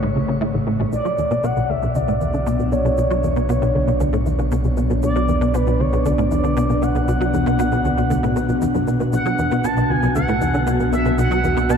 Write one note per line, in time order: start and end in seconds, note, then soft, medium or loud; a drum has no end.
0.00 0.90 A1 medium
0.00 0.15 G#2 medium
0.00 0.93 A2 medium
0.00 0.92 C#3 medium
0.00 0.93 A3 medium
0.00 1.74 E4 medium
0.00 0.41 C#5 medium
0.00 2.95 E5 medium
0.15 0.28 C#2 medium
0.28 0.38 C#3 medium
0.41 0.50 A2 loud
0.54 0.60 A1 medium
0.67 0.76 A2 medium
0.79 0.85 A1 loud
0.92 1.02 B1 loud
0.92 9.11 B1 medium
0.92 11.77 B2 medium
0.92 1.45 D5 loud
0.92 shaker medium
1.05 1.15 F#3 medium
1.05 shaker soft
1.18 1.30 E2 medium
1.18 shaker medium
1.23 11.77 B3 medium
1.23 11.77 F#4 medium
1.31 1.40 B2 loud
1.31 low bongo medium
1.31 shaker soft
1.44 1.53 B2 loud
1.44 1.71 F#5 loud
1.44 shaker medium
1.49 11.77 D4 medium
1.57 1.66 B1 medium
1.57 shaker soft
1.69 1.79 D2 medium
1.69 1.97 E5 loud
1.82 1.88 B1 loud
1.82 shaker soft
1.92 2.04 D2 medium
1.92 11.77 B4 medium
1.92 2.73 D5 loud
1.92 shaker medium
2.08 2.20 A2 loud
2.08 low bongo medium
2.08 shaker soft
2.21 2.33 E2 medium
2.21 shaker medium
2.34 2.43 D3 medium
2.34 shaker soft
2.46 2.56 B2 loud
2.46 shaker medium
2.59 2.65 B1 medium
2.59 shaker soft
2.72 2.81 B2 medium
2.72 4.77 C#5 medium
2.72 shaker medium
2.85 2.90 B1 loud
2.85 low bongo medium
2.85 shaker soft
2.98 3.07 B1 loud
2.98 shaker medium
3.11 3.20 F#3 medium
3.11 shaker soft
3.23 3.36 E2 medium
3.23 shaker medium
3.36 3.46 B2 loud
3.36 shaker soft
3.49 3.58 B2 loud
3.49 shaker medium
3.62 3.71 B1 loud
3.62 low bongo medium
3.62 shaker soft
3.75 3.84 D2 medium
3.87 3.93 B1 loud
3.87 shaker soft
4.00 4.09 D2 loud
4.00 shaker medium
4.13 4.25 A2 loud
4.13 shaker soft
4.26 4.38 E2 medium
4.26 shaker medium
4.39 4.48 D3 medium
4.39 low bongo medium
4.39 shaker soft
4.52 4.61 B2 loud
4.52 shaker medium
4.64 4.70 B1 medium
4.64 shaker soft
4.77 4.86 B2 medium
4.77 shaker medium
4.90 4.96 B1 loud
4.90 shaker soft
5.03 5.12 B1 medium
5.03 5.55 D5 loud
5.03 shaker medium
5.16 5.25 F#3 medium
5.16 low bongo medium
5.16 shaker soft
5.28 5.41 E2 medium
5.28 shaker medium
5.41 5.51 B2 loud
5.41 shaker soft
5.54 5.63 B2 loud
5.54 5.81 B4 medium
5.54 shaker medium
5.67 5.76 B1 loud
5.67 shaker soft
5.80 5.89 D2 medium
5.80 6.07 C#5 medium
5.93 5.98 B1 loud
5.93 low bongo medium
5.93 shaker soft
6.05 6.15 D2 loud
6.05 6.83 D5 loud
6.05 shaker medium
6.18 6.30 A2 loud
6.18 shaker soft
6.31 6.43 E2 medium
6.31 shaker medium
6.44 6.53 D3 medium
6.44 shaker soft
6.57 6.66 B2 loud
6.57 shaker medium
6.69 6.75 B1 medium
6.69 low bongo medium
6.69 shaker soft
6.82 6.91 B2 medium
6.82 8.87 F#5 loud
6.82 shaker medium
6.95 7.01 B1 medium
6.95 shaker soft
7.08 7.17 B1 loud
7.08 shaker medium
7.21 7.30 F#3 loud
7.21 shaker soft
7.34 7.46 E2 medium
7.34 shaker medium
7.46 7.56 B2 loud
7.46 low bongo medium
7.46 shaker soft
7.59 7.68 B2 loud
7.59 shaker medium
7.72 7.81 B1 loud
7.72 shaker soft
7.84 7.94 D2 medium
7.84 shaker soft
7.97 8.03 B1 loud
7.97 shaker soft
8.10 8.20 D2 loud
8.10 shaker medium
8.23 8.35 A2 loud
8.23 low bongo medium
8.23 shaker soft
8.36 8.42 B2 medium
8.36 shaker medium
8.49 8.54 B1 medium
8.49 shaker soft
8.62 8.67 E2 medium
8.62 shaker medium
8.74 8.87 F#2 medium
8.74 shaker soft
8.87 8.97 B2 medium
8.87 shaker medium
9.00 9.10 B2 medium
9.00 low bongo medium
9.00 shaker soft
9.13 9.22 B1 medium
9.13 11.77 B1 medium
9.13 9.66 F#5 loud
9.13 shaker medium
9.26 9.35 F#3 loud
9.26 shaker soft
9.39 9.51 E2 medium
9.39 shaker medium
9.51 9.61 B2 loud
9.51 low bongo medium
9.51 shaker soft
9.64 9.74 B2 loud
9.64 9.91 A5 medium
9.64 shaker medium
9.77 9.86 B1 loud
9.77 shaker soft
9.90 9.99 D2 medium
9.90 10.15 G#5 loud
10.03 10.08 B1 loud
10.03 shaker soft
10.15 10.25 D2 loud
10.15 10.88 F#5 loud
10.15 shaker medium
10.28 10.41 A2 loud
10.28 low bongo medium
10.28 shaker soft
10.41 10.53 E2 medium
10.41 shaker medium
10.54 10.63 D3 medium
10.54 shaker soft
10.67 10.76 B2 loud
10.67 shaker medium
10.80 10.85 B1 medium
10.80 shaker soft
10.92 11.02 B2 medium
10.92 11.16 E5 medium
10.92 shaker medium
11.05 11.11 B1 medium
11.05 low bongo medium
11.05 shaker soft
11.18 11.27 B1 loud
11.18 11.71 F#5 loud
11.18 shaker medium
11.31 11.40 F#3 loud
11.31 shaker soft
11.44 11.56 E2 medium
11.44 shaker medium
11.57 11.66 B2 loud
11.57 shaker soft
11.69 11.77 B2 loud
11.69 11.77 A5 loud
11.69 shaker medium